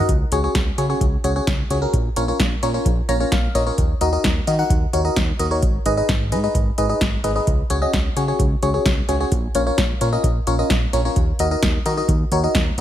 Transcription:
0.09 analog synth bass C#2, kick, closed hi-hat
0.32 analog synth bass C#2, fm electric piano C#4 F#4 G#4 C#5, closed hi-hat
0.44 fm electric piano C#4 F#4 G#4 C#5
0.55 analog synth bass C#2, kick, snare, closed hi-hat
0.78 analog synth bass C#3, fm electric piano C#4 F#4 G#4 C#5, closed hi-hat
0.90 fm electric piano C#4 F#4 G#4 C#5
1.01 analog synth bass C#2, kick, closed hi-hat
1.24 analog synth bass C#2, fm electric piano C#4 F#4 G#4 C#5, closed hi-hat
1.36 fm electric piano C#4 F#4 G#4 C#5
1.47 analog synth bass C#2, kick, snare, closed hi-hat
1.70 analog synth bass C#2, fm electric piano C#4 F#4 G#4 C#5, closed hi-hat
1.82 fm electric piano C#4 F#4 G#4 A#4
1.93 analog synth bass A#1, kick, closed hi-hat
2.16 analog synth bass A#1, fm electric piano C#4 F4 A#4 C#5, closed hi-hat
2.28 fm electric piano C#4 F4 A#4 C#5
2.40 analog synth bass A#1, kick, snare, closed hi-hat
2.63 analog synth bass A#2, fm electric piano C#4 F4 A#4 C#5, closed hi-hat
2.74 fm electric piano C#4 F4 A#4 C#5
2.85 analog synth bass A#1, kick, closed hi-hat
3.09 analog synth bass A#1, fm electric piano C#4 F4 A#4 C#5 A#5, closed hi-hat
3.20 fm electric piano C#4 F4 A#4 C#5
3.32 analog synth bass A#1, fm electric piano F5, kick, snare, closed hi-hat
3.55 analog synth bass A#1, fm electric piano C#4 F4 A#4 C#5 D#5, closed hi-hat
3.67 fm electric piano C#4 F4 A#4 C#5
3.78 analog synth bass D#2, kick, closed hi-hat
4.01 analog synth bass D#2, fm electric piano D#4 F#4 A#4 D#5, closed hi-hat
4.13 fm electric piano D#4 F#4 A#4 D#5
4.24 analog synth bass D#2, kick, snare, closed hi-hat
4.47 analog synth bass D#3, fm electric piano D#4 F#4 A#4 D#5, closed hi-hat
4.59 fm electric piano D#4 F#4 A#4 F#5
4.70 analog synth bass D#2, kick, closed hi-hat
4.93 analog synth bass D#2, fm electric piano D#4 F#4 A#4 C#5, closed hi-hat
5.05 fm electric piano D#4 F#4 A#4 D#5
5.16 analog synth bass D#2, kick, snare, closed hi-hat
5.39 analog synth bass D#2, fm electric piano D#4 F#4 A#4 D#5, closed hi-hat
5.51 fm electric piano D#4 F#4 A#4 C#5
5.62 analog synth bass G#1, kick, closed hi-hat
5.86 analog synth bass G#1, fm electric piano D#4 G#4 B4 D#5, closed hi-hat
5.97 fm electric piano D#4 G#4 B4 D#5
6.09 analog synth bass G#1, kick, snare, closed hi-hat
6.32 analog synth bass G#2, fm electric piano D#4 G#4 B4 D#5, closed hi-hat
6.44 fm electric piano D#4 G#4 B4 D#5
6.55 analog synth bass G#1, kick, closed hi-hat
6.78 analog synth bass G#1, fm electric piano D#4 G#4 B4 D#5, closed hi-hat
6.89 fm electric piano D#4 G#4 B4 D#5
7.01 analog synth bass G#1, kick, snare, closed hi-hat
7.24 analog synth bass G#1, fm electric piano D#4 G#4 B4 D#5, closed hi-hat
7.36 fm electric piano D#4 G#4 B4 D#5
7.47 analog synth bass C#2, kick, closed hi-hat
7.70 analog synth bass C#2, fm electric piano C#4 F#4 G#4 C#5, closed hi-hat
7.82 fm electric piano C#4 F#4 G#4 D#5
7.93 analog synth bass C#2, kick, snare, closed hi-hat
8.16 analog synth bass C#3, fm electric piano C#4 F#4 G#4 C#5, closed hi-hat
8.28 fm electric piano C#4 F#4 G#4 C#5
8.39 analog synth bass C#2, kick, closed hi-hat
8.63 analog synth bass C#2, fm electric piano C#4 F#4 G#4 C#5, closed hi-hat
8.74 fm electric piano C#4 F#4 G#4 C#5
8.86 analog synth bass C#2, kick, snare, closed hi-hat
9.09 analog synth bass C#2, fm electric piano C#4 F#4 G#4 C#5, closed hi-hat
9.20 fm electric piano C#4 F#4 G#4 C#5
9.32 analog synth bass A#1, kick, closed hi-hat
9.55 analog synth bass A#1, fm electric piano C#4 F4 A#4 C#5, closed hi-hat
9.67 fm electric piano C#4 F4 A#4 C#5
9.78 analog synth bass A#1, kick, snare, closed hi-hat
10.01 analog synth bass A#2, fm electric piano C#4 F4 A#4 C#5, closed hi-hat
10.13 fm electric piano C#4 F4 A#4 D#5
10.24 analog synth bass A#1, kick, closed hi-hat
10.47 analog synth bass A#1, fm electric piano C#4 F4 A#4 C#5, closed hi-hat
10.59 fm electric piano C#4 F4 A#4 D#5
10.70 analog synth bass A#1, kick, snare, closed hi-hat
10.93 analog synth bass A#1, fm electric piano C#4 F4 A#4 C#5, closed hi-hat
11.05 fm electric piano C#4 F4 A#4 C#5
11.16 analog synth bass D#2, kick, closed hi-hat
11.39 analog synth bass D#2, fm electric piano D#4 F#4 A#4 D#5, closed hi-hat
11.51 fm electric piano D#4 F#4 A#4 D#5
11.63 analog synth bass D#2, kick, snare, closed hi-hat
11.86 analog synth bass D#3, fm electric piano D#4 F#4 A#4 D#5, closed hi-hat
11.97 fm electric piano D#4 F#4 A#4 D#5
12.08 analog synth bass D#2, kick, closed hi-hat
12.32 analog synth bass D#2, fm electric piano D#4 F#4 A#4 C#5, closed hi-hat
12.44 fm electric piano D#4 F#4 A#4 D#5
12.55 analog synth bass D#2, kick, snare, closed hi-hat

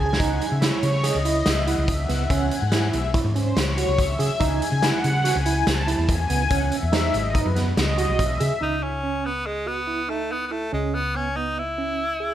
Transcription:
Already playing: analog synth pad G#5
0.00 fingered electric bass C#2, tine electric piano G#4
0.13 snare
0.20 fingered electric bass C#2, tine electric piano D#4, analog synth pad F#5, kick, closed hi-hat
0.34 analog synth pad G#5
0.41 closed hi-hat
0.48 fingered electric bass C#3, analog synth pad E5
0.61 tine electric piano E4, analog synth pad C#5, snare, closed hi-hat
0.83 fingered electric bass C#3, closed hi-hat
1.03 tine electric piano G#4, analog synth pad D#5, snare, closed hi-hat
1.15 fingered electric bass C#2
1.25 tine electric piano E4, closed hi-hat
1.46 fingered electric bass C#2, analog synth pad E5, snare, closed hi-hat
1.60 analog synth pad F#5
1.67 tine electric piano E4, closed hi-hat
1.74 analog synth pad D#5
1.78 fingered electric bass C#2
1.87 analog synth pad E5, kick, closed hi-hat
2.02 analog synth pad F#5
2.09 fingered electric bass C#2, tine electric piano B3, snare, closed hi-hat
2.16 analog synth pad E5
2.30 fingered electric bass C#2, tine electric piano C#4, analog synth pad F#5, kick, closed hi-hat
2.44 analog synth pad G#5
2.51 closed hi-hat
2.58 analog synth pad F#5
2.62 fingered electric bass G#2
2.72 tine electric piano E4, analog synth pad G#5, snare, closed hi-hat
2.81 analog synth pad F#5
2.87 analog synth pad E5
2.93 fingered electric bass B1, closed hi-hat
3.14 tine electric piano E4, kick, closed hi-hat
3.24 fingered electric bass G#2
3.35 tine electric piano C#4, analog synth pad C5, closed hi-hat
3.56 fingered electric bass C#2, analog synth pad C#5, snare, closed hi-hat
3.77 tine electric piano F#4, closed hi-hat
3.88 fingered electric bass C#2
3.98 analog synth pad E5, kick, closed hi-hat
4.19 fingered electric bass C#3, tine electric piano G#4, closed hi-hat
4.40 fingered electric bass C#2, tine electric piano D#4, analog synth pad G#5, kick, closed hi-hat
4.62 closed hi-hat
4.72 fingered electric bass C#3
4.82 tine electric piano E4, analog synth pad F#5, snare, closed hi-hat
5.04 fingered electric bass C#3, closed hi-hat
5.24 tine electric piano F#4, analog synth pad G#5, snare, closed hi-hat
5.36 fingered electric bass C#2
5.46 tine electric piano E4, closed hi-hat
5.67 fingered electric bass C#2, analog synth pad A5, snare, closed hi-hat
5.87 tine electric piano E4, closed hi-hat
5.98 fingered electric bass E2
6.09 analog synth pad G#5, kick, closed hi-hat
6.30 fingered electric bass C#2, tine electric piano B3, closed hi-hat
6.50 fingered electric bass C#2, tine electric piano C#4, analog synth pad F#5, kick, closed hi-hat
6.72 analog synth pad E5, closed hi-hat
6.83 fingered electric bass E2
6.92 tine electric piano D#4, snare, closed hi-hat
7.14 fingered electric bass G#1, analog synth pad D#5, closed hi-hat
7.34 tine electric piano D#4, analog synth pad B4, kick, closed hi-hat
7.46 fingered electric bass F#2
7.56 tine electric piano B3, snare, closed hi-hat
7.77 fingered electric bass C#2, analog synth pad D#5, snare, closed hi-hat
7.98 tine electric piano F#4, closed hi-hat
8.09 fingered electric bass B1
8.19 analog synth pad E5, kick, closed hi-hat
8.40 fingered electric bass C#3, tine electric piano G#4, closed hi-hat
8.61 fingered electric bass C#2, tine electric piano D#4, tenor saxophone D#4
8.83 tenor saxophone C#4
9.03 tine electric piano C#4
9.26 tenor saxophone B3
9.46 tenor saxophone G#3
9.66 tenor saxophone B3, tine electric piano F#4
9.87 tine electric piano E4
10.08 tenor saxophone A3, tine electric piano D#4
10.32 tenor saxophone B3
10.47 tenor saxophone B3
10.51 tenor saxophone A3, tine electric piano E4
10.72 fingered electric bass C#2, tenor saxophone G#3, tine electric piano C#4
10.94 tenor saxophone B3
11.15 tine electric piano B3, tenor saxophone C#4
11.36 tine electric piano B3, tenor saxophone D#4
11.59 tenor saxophone E4
11.78 tine electric piano C#4
12.20 tine electric piano G#4

